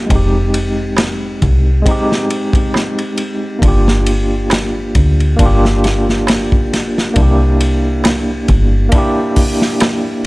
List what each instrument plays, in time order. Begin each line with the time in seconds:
Already playing: tine electric piano A#3 D4 F4 G4
0.06 fingered electric bass F1, tine electric piano G#3 C4, kick, ride
0.12 tine electric piano D#4 G4
0.54 ride
0.97 snare, ride, darbuka tek
1.42 fingered electric bass C2, kick, ride
1.82 tine electric piano G#3 C4, kick
1.86 tine electric piano D#4, ride
1.91 tine electric piano G4
2.12 snare
2.30 ride
2.53 kick, ride
2.74 snare, darbuka tek
2.98 ride
3.17 ride
3.59 fingered electric bass G1, tine electric piano A#3 D4, kick, ride
3.65 tine electric piano F4 G4
3.88 snare
4.06 ride
4.50 snare, ride, darbuka tek
4.95 fingered electric bass D2, kick, ride
5.20 ride
5.37 fingered electric bass G1, tine electric piano A#3 D4, kick, ride
5.43 tine electric piano F4 G4
5.65 snare
5.84 snare, ride
6.09 snare
6.27 snare, ride, darbuka tek
6.52 kick
6.73 snare, ride
6.98 snare
7.14 fingered electric bass C2, tine electric piano A#3 D4, kick, ride
7.19 tine electric piano E4 G4
7.60 ride
8.04 snare, ride, darbuka tek
8.48 fingered electric bass G1, kick, ride
8.89 tine electric piano A#3 D4, kick, ride
8.95 tine electric piano E4 G4
9.36 kick, open hi-hat
9.62 snare
9.80 snare, ride, darbuka tek